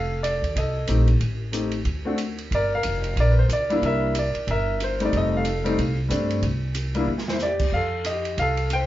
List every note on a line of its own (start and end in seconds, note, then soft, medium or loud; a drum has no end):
0.00 0.40 F1 medium
0.00 0.53 A4 medium
0.00 0.25 F5 medium
0.23 0.53 D5 medium
0.23 hi-hat pedal medium
0.23 ride medium
0.42 0.54 D#2 medium
0.42 ride soft
0.55 0.86 C2 medium
0.55 1.18 A4 medium
0.55 1.06 D#5 medium
0.55 kick soft
0.55 ride medium
0.87 1.19 A#1 medium
0.87 1.06 A3 medium
0.87 1.06 C4 soft
0.87 1.06 D#4 medium
0.87 1.07 G4 medium
0.87 hi-hat pedal soft
0.87 ride medium
1.08 ride soft
1.20 1.82 A1 medium
1.20 kick soft
1.20 ride medium
1.52 1.71 A3 soft
1.52 1.71 C4 soft
1.52 1.71 D#4 soft
1.52 1.72 G4 medium
1.52 hi-hat pedal medium
1.52 ride medium
1.72 ride soft
1.85 2.47 D2 medium
1.85 kick soft
1.85 ride medium
2.05 2.17 A3 medium
2.05 2.17 C4 medium
2.05 2.18 D4 soft
2.05 2.18 F#4 medium
2.18 hi-hat pedal soft
2.18 ride medium
2.38 ride soft
2.51 2.81 G1 medium
2.51 2.74 A#4 medium
2.51 2.72 D5 medium
2.51 kick soft
2.51 ride medium
2.75 3.18 A#4 medium
2.75 3.19 F5 medium
2.83 3.15 F1 medium
2.83 hi-hat pedal medium
2.83 ride medium
3.04 ride soft
3.16 3.47 A#1 medium
3.16 3.79 A#4 medium
3.16 3.32 D5 medium
3.16 kick soft
3.16 ride medium
3.31 3.36 B4 medium
3.39 3.44 C5 medium
3.49 3.79 C#2 medium
3.49 hi-hat pedal medium
3.49 ride medium
3.53 3.81 D5 medium
3.70 4.12 G3 medium
3.70 4.12 A#3 medium
3.70 4.13 D4 medium
3.70 4.13 E4 medium
3.70 ride soft
3.82 4.31 C2 medium
3.82 4.45 A#4 medium
3.82 kick soft
3.82 ride medium
3.86 4.14 E5 medium
4.15 4.47 D5 medium
4.15 hi-hat pedal soft
4.15 ride medium
4.35 muted upright bass stroke soft
4.35 ride soft
4.47 5.09 G1 medium
4.47 5.10 A#4 medium
4.47 4.79 E5 medium
4.47 kick soft
4.47 ride medium
4.80 5.00 C5 medium
4.80 hi-hat pedal medium
4.80 ride medium
5.00 5.42 G3 medium
5.00 5.43 A3 medium
5.00 5.43 C4 medium
5.00 5.43 D#4 medium
5.00 ride soft
5.05 5.15 D5 medium
5.13 5.74 F1 medium
5.13 kick soft
5.13 ride medium
5.17 5.35 A4 medium
5.17 5.35 D#5 medium
5.36 5.95 A4 medium
5.36 5.96 F5 medium
5.45 hi-hat pedal medium
5.45 ride medium
5.64 5.76 G3 medium
5.64 5.76 A3 medium
5.64 5.76 C4 medium
5.64 5.77 D#4 medium
5.64 ride soft
5.78 6.08 C2 medium
5.78 kick soft
5.78 ride medium
6.09 6.41 G2 medium
6.09 6.42 G3 medium
6.09 6.42 A3 medium
6.09 6.43 C4 medium
6.09 6.43 D4 medium
6.09 hi-hat pedal medium
6.09 ride medium
6.31 ride soft
6.42 7.05 C2 medium
6.42 kick soft
6.42 ride medium
6.75 hi-hat pedal medium
6.75 ride medium
6.95 7.06 G3 medium
6.95 7.07 A#3 medium
6.95 7.07 D4 medium
6.95 7.07 E4 medium
6.95 ride soft
7.08 7.70 E2 medium
7.18 snare medium
7.28 7.42 E4 soft
7.28 7.41 C5 medium
7.28 snare medium
7.39 7.75 D5 medium
7.39 snare soft
7.39 hi-hat pedal medium
7.45 7.73 G4 medium
7.59 kick medium
7.59 crash medium
7.73 8.35 F2 medium
7.73 8.05 A4 medium
7.73 8.04 F5 medium
7.73 kick soft
8.05 8.36 D#5 medium
8.05 hi-hat pedal medium
8.05 ride medium
8.09 8.38 G4 medium
8.25 ride soft
8.37 8.86 C2 medium
8.37 8.72 F5 loud
8.37 kick soft
8.37 ride medium
8.42 8.70 A4 medium
8.57 ride soft
8.70 8.86 G5 loud
8.70 hi-hat pedal medium
8.70 ride medium
8.75 8.86 C5 medium